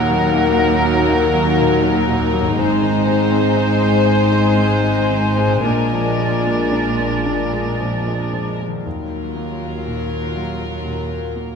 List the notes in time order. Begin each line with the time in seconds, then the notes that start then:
Already playing: D#2 A#2 F#3 A#3 D#4 A#4 F#5
0.10 F#3
0.34 A#3
0.59 D#4
0.84 A#3
1.09 D#4
1.33 F#3
1.58 A#2
1.82 F#3
2.08 A#2
2.33 F#3
2.40 G#2
2.44 G#3
2.49 C4
2.53 C4 D#4
2.57 G#1 G#2 G#3 C5 G#5
2.82 D#3
3.07 G#3
3.32 C4
3.57 D#4
3.81 C4
4.06 D#4
4.32 G#3
4.57 D#3
4.84 G#3
5.11 D#3
5.38 G#3
5.46 A#2
5.51 G#3
5.55 A#3
5.60 A#2 D4 F4
5.64 A#1 A#2 A#4 D5
5.93 F3
6.19 G#3
6.47 A#3
6.72 D4
7.00 A#3
7.26 D4
7.53 G#3
7.80 F3
8.08 G#3
8.33 F3
8.61 G#3
8.67 D#3
8.71 F#3
8.76 A#3
8.80 F4
8.84 D#2 F#3 F4 A#4
9.36 A#3
9.86 A#2
10.36 F#3
10.86 A#2
11.36 A#3